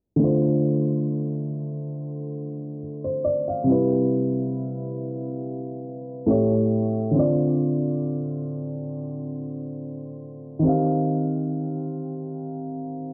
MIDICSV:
0, 0, Header, 1, 2, 480
1, 0, Start_track
1, 0, Tempo, 869565
1, 106, Time_signature, 4, 2, 24, 8
1, 7250, End_track
2, 0, Start_track
2, 0, Title_t, "Felt piano"
2, 0, Program_c, 0, 0
2, 89, Note_on_c, 0, 50, 65
2, 103, Note_on_c, 0, 57, 59
2, 118, Note_on_c, 0, 65, 63
2, 132, Note_on_c, 0, 72, 78
2, 208, Control_c, 0, 64, 127
2, 1537, Note_off_c, 0, 72, 0
2, 1679, Note_on_c, 0, 72, 61
2, 1782, Note_off_c, 0, 72, 0
2, 1790, Note_on_c, 0, 74, 67
2, 1911, Note_off_c, 0, 74, 0
2, 1920, Note_on_c, 0, 77, 62
2, 1995, Note_off_c, 0, 50, 0
2, 2002, Note_off_c, 0, 57, 0
2, 2008, Note_on_c, 0, 48, 73
2, 2010, Note_off_c, 0, 65, 0
2, 2022, Note_on_c, 0, 55, 62
2, 2034, Control_c, 0, 64, 0
2, 2037, Note_on_c, 0, 64, 65
2, 2052, Note_on_c, 0, 71, 75
2, 2127, Control_c, 0, 64, 127
2, 2146, Note_off_c, 0, 77, 0
2, 3435, Note_off_c, 0, 48, 0
2, 3442, Note_off_c, 0, 55, 0
2, 3450, Note_off_c, 0, 64, 0
2, 3457, Note_off_c, 0, 71, 0
2, 3458, Note_on_c, 0, 45, 70
2, 3466, Note_on_c, 0, 57, 68
2, 3473, Note_on_c, 0, 67, 66
2, 3474, Control_c, 0, 64, 0
2, 3480, Note_on_c, 0, 73, 80
2, 3573, Control_c, 0, 64, 127
2, 3926, Note_on_c, 0, 50, 70
2, 3940, Note_on_c, 0, 60, 65
2, 3942, Note_off_c, 0, 45, 0
2, 3946, Note_off_c, 0, 57, 0
2, 3949, Note_off_c, 0, 67, 0
2, 3953, Note_off_c, 0, 73, 0
2, 3954, Control_c, 0, 64, 0
2, 3955, Note_on_c, 0, 65, 62
2, 3969, Note_on_c, 0, 74, 74
2, 4064, Control_c, 0, 64, 127
2, 5834, Note_off_c, 0, 50, 0
2, 5841, Note_off_c, 0, 60, 0
2, 5847, Note_on_c, 0, 51, 69
2, 5848, Note_off_c, 0, 65, 0
2, 5856, Note_off_c, 0, 74, 0
2, 5862, Note_on_c, 0, 60, 65
2, 5872, Control_c, 0, 64, 0
2, 5876, Note_on_c, 0, 67, 64
2, 5891, Note_on_c, 0, 77, 74
2, 5955, Control_c, 0, 64, 127
2, 7250, Note_off_c, 0, 51, 0
2, 7250, Note_off_c, 0, 60, 0
2, 7250, Note_off_c, 0, 67, 0
2, 7250, Note_off_c, 0, 77, 0
2, 7250, End_track
0, 0, End_of_file